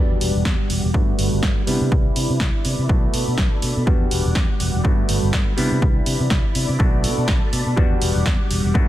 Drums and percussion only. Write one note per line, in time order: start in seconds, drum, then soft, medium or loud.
0.21 open hi-hat loud
0.45 kick loud
0.45 snare loud
0.70 open hi-hat medium
0.94 kick loud
1.19 open hi-hat loud
1.43 kick loud
1.43 snare loud
1.67 open hi-hat medium
1.92 kick loud
2.16 open hi-hat loud
2.40 kick loud
2.40 snare loud
2.65 open hi-hat medium
2.89 kick loud
3.14 open hi-hat loud
3.38 kick loud
3.38 snare loud
3.62 open hi-hat loud
3.87 kick loud
4.11 open hi-hat loud
4.35 kick loud
4.35 snare loud
4.60 open hi-hat medium
4.85 kick loud
5.09 open hi-hat loud
5.33 kick loud
5.33 snare loud
5.58 open hi-hat medium
5.82 kick loud
6.06 open hi-hat loud
6.30 kick loud
6.30 snare loud
6.55 open hi-hat medium
6.80 kick loud
7.04 open hi-hat loud
7.28 kick loud
7.28 snare loud
7.53 open hi-hat medium
7.77 kick loud
8.02 open hi-hat loud
8.26 kick loud
8.26 snare loud
8.51 open hi-hat medium
8.75 kick loud